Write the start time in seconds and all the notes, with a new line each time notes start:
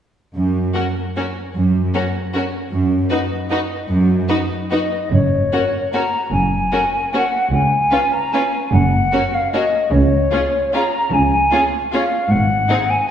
0.35 F#2
0.75 C#4 F#4 A#4
1.17 C#4 F#4 A#4
1.55 F#2
1.94 C#4 F#4 A#4
2.34 C#4 F#4 A#4
2.73 F#2
3.10 D#4 F#4 B4
3.50 D#4 F#4 B4
3.90 F#2
4.29 D#4 F#4 B4
4.71 D#4 F#4 B4 D#5
5.12 F#1 F#2 C#5
5.53 C#4 F#4 A#4
5.93 C#4 F#4 A#4 A#5
6.33 F#1 F#2 G#5
6.72 C#4 F#4 A#4
7.14 C#4 F#4 A#4 F#5
7.53 C#2 G#5
7.92 C#4 F4 B4
8.13 A#5
8.33 C#4 F4 B4 G#5
8.72 F#1 F#2 F#5
9.12 C#4 F#4 A#4
9.34 F5
9.53 C#4 F#4 A#4 D#5
9.92 C#2 C#3 C#5
10.32 C#4 F4 G#4
10.74 C#4 F4 G#4 A#5
11.13 C#2 C#3 G#5
11.52 C#4 F4 G#4
11.93 C#4 F4 G#4 F5
12.31 G#1 G#2 F#5
12.69 C4 D#4 G#4
12.90 G#5